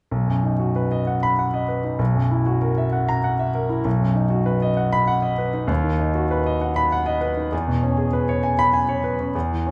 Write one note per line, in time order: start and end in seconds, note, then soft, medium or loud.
0.11 1.96 B1 medium
0.28 0.53 F#2 soft
0.44 0.69 D#4 medium
0.60 0.85 F#4 soft
0.76 1.01 B4 medium
0.92 1.17 D#5 medium
1.07 1.32 F#5 soft
1.23 1.47 B5 medium
1.39 1.63 F#5 soft
1.54 1.78 D#5 medium
1.68 1.93 B4 medium
1.84 1.99 D#4 soft
1.99 3.81 B1 medium
2.15 2.40 F#2 soft
2.31 2.56 E4 soft
2.46 2.71 F#4 medium
2.62 2.86 A#4 medium
2.78 3.02 E5 medium
2.93 3.17 F#5 soft
3.09 3.33 A#5 medium
3.24 3.49 F#5 medium
3.39 3.64 E5 medium
3.55 3.79 A#4 medium
3.69 3.85 E4 soft
3.84 5.64 B1 medium
4.00 4.24 F#2 soft
4.15 4.40 D#4 medium
4.30 4.55 F#4 medium
4.46 4.70 B4 medium
4.62 4.86 D#5 medium
4.77 5.01 F#5 medium
4.93 5.17 B5 medium
5.08 5.32 F#5 medium
5.22 5.47 D#5 medium
5.38 5.63 B4 medium
5.53 5.69 D#4 medium
5.67 7.47 D#2 medium
5.83 6.08 D#3 medium
6.00 6.24 D#4 medium
6.15 6.40 F#4 medium
6.31 6.55 B4 medium
6.46 6.71 D#5 medium
6.61 6.86 F#5 medium
6.76 7.00 B5 medium
6.92 7.16 F#5 medium
7.06 7.31 D#5 medium
7.21 7.46 B4 medium
7.37 7.52 D#4 soft
7.52 9.31 E2 medium
7.68 7.92 B2 medium
7.83 8.07 C#4 medium
7.98 8.22 G#4 medium
8.13 8.37 B4 medium
8.29 8.53 C#5 medium
8.43 8.68 G#5 medium
8.59 8.83 B5 medium
8.73 8.98 G#5 medium
8.89 9.13 C#5 medium
9.04 9.28 B4 medium
9.20 9.35 C#4 soft
9.35 9.71 E2 medium
9.51 9.71 E3 soft
9.67 9.71 C#4 medium